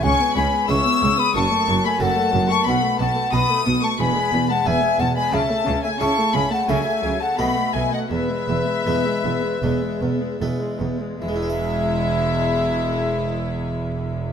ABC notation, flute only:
X:1
M:4/4
L:1/16
Q:1/4=87
K:E
V:1 name="Flute"
g2 g2 c'3 b a3 g f3 a | f2 f2 b3 a g3 f e2 f g | e3 e a2 g f e3 f f2 e d | B12 z4 |
e16 |]